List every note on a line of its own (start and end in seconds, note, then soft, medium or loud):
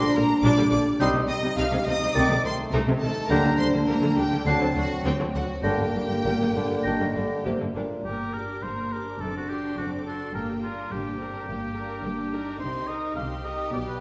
0.00 0.07 A#2 medium
0.00 0.07 D3 medium
0.00 2.15 G3 medium
0.00 0.07 G3 medium
0.00 0.83 D4 medium
0.00 0.15 C5 medium
0.00 0.15 C6 loud
0.00 0.13 A#6 medium
0.14 0.21 A#1 medium
0.14 0.21 A#2 medium
0.14 0.21 D3 medium
0.14 0.21 A#3 medium
0.14 0.23 A#4 medium
0.14 0.43 A#5 loud
0.43 0.49 A#1 medium
0.43 0.49 A#2 medium
0.43 0.49 G3 medium
0.43 0.49 D4 medium
0.43 0.72 D5 medium
0.43 0.70 D6 medium
0.57 0.63 A#2 medium
0.57 0.63 D3 medium
0.57 0.63 G3 medium
0.71 0.78 A#1 medium
0.71 0.77 A#2 medium
0.71 0.77 D3 medium
0.71 0.77 A#3 medium
0.71 1.01 D5 medium
0.71 0.79 D6 medium
1.00 1.06 C2 loud
1.00 1.06 C3 medium
1.00 1.06 G3 medium
1.00 1.21 G3 medium
1.00 1.20 C4 medium
1.00 3.26 D#4 medium
1.00 1.06 D#4 medium
1.00 1.08 C5 medium
1.00 1.21 D#5 medium
1.00 1.09 C6 loud
1.00 1.27 G6 medium
1.15 1.20 C3 medium
1.15 1.21 C3 medium
1.15 1.21 G3 soft
1.28 1.35 C2 medium
1.28 1.34 C3 medium
1.28 1.35 D#3 medium
1.28 1.35 C4 medium
1.28 1.57 D#5 loud
1.28 1.38 D#6 medium
1.44 1.49 C3 medium
1.44 1.49 G3 medium
1.56 1.63 C2 medium
1.56 1.64 C3 loud
1.56 1.64 G3 medium
1.56 1.64 D#4 medium
1.56 1.86 F5 medium
1.56 1.67 F6 loud
1.72 1.78 C3 medium
1.72 1.79 G3 medium
1.85 1.92 C2 medium
1.85 1.93 C3 medium
1.85 1.93 D#3 medium
1.85 1.93 C4 medium
1.85 2.15 D#5 medium
1.85 2.16 D#6 loud
2.01 2.07 C3 medium
2.01 2.08 C3 medium
2.01 2.08 G3 medium
2.14 2.21 C2 loud
2.14 2.21 C3 loud
2.14 2.35 D#3 medium
2.14 3.30 A3 medium
2.14 2.22 A3 medium
2.14 2.36 C4 medium
2.14 2.22 D#4 medium
2.14 2.43 D5 medium
2.14 2.35 D#5 medium
2.14 2.45 D6 loud
2.14 2.42 A6 medium
2.30 2.35 C3 medium
2.30 2.36 C3 medium
2.30 2.36 A3 medium
2.44 2.50 C2 medium
2.44 2.50 C3 medium
2.44 2.51 D#3 medium
2.44 2.50 C4 medium
2.44 2.52 C5 medium
2.44 2.53 C6 loud
2.72 2.79 C2 loud
2.72 2.78 C3 medium
2.72 2.79 A3 loud
2.72 2.79 D#4 medium
2.72 2.80 A#4 medium
2.72 2.80 A#5 medium
2.86 2.92 C3 medium
2.86 2.93 C3 medium
2.86 2.93 A3 medium
3.01 3.07 C2 medium
3.01 3.07 C3 medium
3.01 3.08 D#3 medium
3.01 3.08 C4 medium
3.01 3.30 A4 medium
3.01 3.29 A5 loud
3.29 3.36 D2 medium
3.29 3.35 D3 medium
3.29 3.50 D3 medium
3.29 4.45 G3 medium
3.29 3.36 A#3 medium
3.29 3.50 D4 medium
3.29 4.45 D4 medium
3.29 3.36 G4 medium
3.29 3.59 A#4 medium
3.29 3.51 G5 medium
3.29 3.59 A#5 loud
3.29 3.57 A#6 medium
3.44 3.50 D3 medium
3.44 3.50 A#3 soft
3.58 3.65 D2 medium
3.58 3.64 D3 medium
3.58 3.64 G3 medium
3.58 3.64 D4 medium
3.58 3.87 C5 medium
3.58 3.66 C6 loud
3.73 3.79 D3 medium
3.73 3.80 D3 medium
3.73 3.79 A#3 medium
3.88 3.94 D2 medium
3.88 3.94 D3 medium
3.88 3.94 A#3 medium
3.88 3.94 G4 medium
3.88 4.17 A#4 medium
3.88 4.18 A#5 medium
4.03 4.08 D3 medium
4.03 4.09 A#3 medium
4.17 4.23 D2 medium
4.17 4.23 D3 medium
4.17 4.23 G3 medium
4.17 4.23 D4 medium
4.17 4.46 G4 medium
4.17 4.46 G5 medium
4.32 4.37 D3 medium
4.32 4.38 D3 medium
4.32 4.38 A#3 medium
4.46 4.52 D2 medium
4.46 4.52 D3 medium
4.46 4.67 D3 medium
4.46 5.65 F#3 medium
4.46 4.52 C4 medium
4.46 5.65 C4 medium
4.46 4.67 D4 medium
4.46 4.52 F#4 medium
4.46 4.54 A4 medium
4.46 4.67 F#5 medium
4.46 4.75 A5 medium
4.46 4.74 C7 medium
4.60 4.66 D3 medium
4.60 4.67 F#3 medium
4.60 4.67 C4 medium
4.75 4.81 D2 medium
4.75 4.81 D3 medium
4.75 4.82 A3 medium
4.75 4.82 D4 medium
4.75 5.04 F#4 medium
4.75 5.04 F#5 medium
5.03 5.10 D2 medium
5.03 5.10 D3 medium
5.03 5.11 C4 loud
5.03 5.11 F#4 medium
5.03 5.13 G4 medium
5.03 5.14 G5 medium
5.19 5.25 D3 medium
5.19 5.25 F#3 medium
5.19 5.26 C4 medium
5.33 5.40 D2 medium
5.33 5.39 D3 medium
5.33 5.41 A3 medium
5.33 5.41 D4 medium
5.33 5.64 F#4 medium
5.33 5.43 F#5 medium
5.63 5.70 G1 medium
5.63 5.69 G2 medium
5.63 5.85 D3 medium
5.63 7.72 G3 medium
5.63 7.75 A#3 medium
5.63 5.71 A#3 medium
5.63 5.85 D4 medium
5.63 7.41 G4 medium
5.63 5.71 G4 medium
5.63 5.85 G5 medium
5.63 7.42 G5 medium
5.63 5.92 A#6 medium
5.78 5.84 G2 medium
5.78 5.86 D3 soft
5.78 5.86 A#3 soft
5.93 6.00 G1 soft
5.93 6.00 G2 soft
5.93 6.01 G3 soft
5.93 6.01 D4 soft
6.09 6.15 G2 medium
6.09 6.16 D3 medium
6.09 6.16 A#3 medium
6.23 6.31 G1 medium
6.23 6.30 G2 medium
6.23 6.39 A#2 medium
6.23 6.32 A#3 medium
6.23 6.32 G4 medium
6.40 6.46 G2 medium
6.40 6.47 D3 medium
6.40 6.47 A#3 medium
6.55 6.61 G1 soft
6.55 6.61 G2 soft
6.55 6.88 D3 medium
6.55 6.62 G3 soft
6.55 6.62 D4 soft
6.71 6.77 G2 soft
6.71 6.77 D3 medium
6.71 6.77 A#3 medium
6.83 6.92 G1 medium
6.83 6.92 G2 medium
6.83 7.17 D#3 medium
6.83 6.91 A#3 medium
6.83 7.07 D4 medium
6.83 6.92 G4 medium
6.83 7.06 G5 medium
6.83 7.12 A#6 medium
7.00 7.07 G2 medium
7.00 7.06 D3 medium
7.00 7.06 A#3 soft
7.15 7.22 G1 soft
7.15 7.22 G2 soft
7.15 7.46 D3 medium
7.15 7.21 G3 medium
7.15 7.21 D4 soft
7.44 7.52 G1 medium
7.44 7.51 G2 medium
7.44 7.59 C3 medium
7.44 7.51 A#3 medium
7.44 7.50 G4 medium
7.59 7.66 G2 soft
7.59 7.66 D3 medium
7.59 7.66 A#3 soft
7.75 7.81 G1 soft
7.75 7.82 G2 medium
7.75 8.05 A#2 medium
7.75 7.81 G3 medium
7.75 7.81 D4 medium
8.05 8.54 G1 medium
8.05 8.54 G2 soft
8.05 8.32 A#3 soft
8.05 8.35 G4 medium
8.05 8.32 A#4 soft
8.05 8.32 A#5 soft
8.34 8.63 D4 soft
8.34 8.63 G4 soft
8.34 8.64 A#4 medium
8.34 8.63 D6 soft
8.62 9.11 G1 medium
8.62 9.11 G2 soft
8.62 8.92 A#3 soft
8.62 8.92 A#4 soft
8.62 8.94 C5 soft
8.62 8.91 A#5 soft
8.92 9.21 D4 soft
8.92 9.21 G4 soft
8.92 9.22 A#4 medium
8.92 9.20 D6 soft
9.19 9.69 F#1 soft
9.19 9.69 F#2 soft
9.19 9.48 C4 soft
9.19 10.30 D4 soft
9.19 9.35 A4 medium
9.19 9.48 A4 soft
9.19 9.48 D6 soft
9.37 9.51 F#4 medium
9.50 9.78 D4 soft
9.50 9.78 F#4 soft
9.50 9.78 G4 medium
9.50 9.78 C6 soft
9.77 10.25 F#1 soft
9.77 10.25 F#2 soft
9.77 10.06 C4 soft
9.77 9.91 F#4 medium
9.77 10.06 A4 soft
9.77 10.06 D6 soft
10.05 10.34 D4 soft
10.05 10.34 F#4 soft
10.05 10.34 A4 medium
10.05 10.35 C6 soft
10.34 10.82 G1 medium
10.34 10.82 G2 soft
10.34 10.61 A#3 soft
10.34 10.90 A#3 soft
10.34 10.61 G4 soft
10.34 10.48 A#4 medium
10.34 10.61 G5 soft
10.63 10.91 D4 soft
10.63 10.93 F4 medium
10.63 10.91 A#4 soft
10.63 10.91 A#5 soft
10.90 11.38 G1 medium
10.90 11.38 G2 soft
10.90 11.19 A#3 soft
10.90 11.19 D4 soft
10.90 11.19 G4 soft
10.90 12.59 G4 soft
10.90 11.19 G5 soft
11.17 11.46 C4 soft
11.17 11.47 D4 soft
11.17 11.47 A#4 soft
11.17 11.48 A#5 soft
11.47 11.94 G1 medium
11.47 11.94 G2 medium
11.47 11.73 A#3 soft
11.47 12.04 A#3 soft
11.47 11.73 G4 soft
11.47 11.74 G5 soft
11.75 12.03 D4 soft
11.75 12.04 A#4 soft
11.75 12.04 A#5 soft
12.03 12.50 G1 medium
12.03 12.51 G2 soft
12.03 12.32 A#3 soft
12.03 12.32 D4 soft
12.03 12.32 G4 soft
12.03 12.32 G5 soft
12.31 12.60 D4 soft
12.31 13.17 D#4 soft
12.31 12.60 A#4 soft
12.31 12.60 A#5 soft
12.59 13.07 C2 medium
12.59 13.07 C3 soft
12.59 12.86 C4 soft
12.59 12.86 G4 soft
12.59 12.89 C5 medium
12.59 12.87 C6 soft
12.88 13.17 D#4 soft
12.88 13.17 A#4 soft
12.88 13.15 D#5 medium
12.88 13.16 A#5 soft
13.16 13.64 C2 medium
13.16 13.64 C3 medium
13.16 13.45 C4 soft
13.16 14.00 G4 medium
13.16 13.45 G4 soft
13.16 13.29 F5 medium
13.16 13.45 C6 soft
13.44 13.74 D#4 soft
13.44 13.74 A#4 soft
13.44 13.72 D#5 medium
13.44 13.73 A#5 soft
13.72 14.00 B1 medium
13.72 14.00 B2 medium
13.72 13.99 B3 soft
13.72 14.00 G4 soft
13.72 13.79 D5 medium
13.72 13.99 F5 soft
13.88 14.00 B4 medium